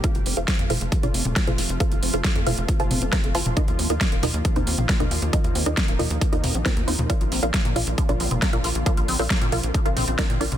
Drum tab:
HH |xxoxxxoxxxoxxxox|xxoxxxoxxxoxxxox|xxoxxxoxxxoxxxox|xxoxxxoxxxoxxxox|
SD |----o-------o---|----o-------o---|----o-------o---|----o-------o---|
T2 |------o--o-o-o--|------o---o----o|------o--o-o-o--|------o---o----o|
BD |o---o---o---o---|o---o---o---o---|o---o---o---o---|o---o---o---o---|

HH |xxoxxxoxxxoxxxox|xxooxxoxxxoxxxox|
SD |----o-------o---|----o-------o---|
T2 |------o--o-o-o--|------o---o----o|
BD |o---o---o---o---|o---o---o---o---|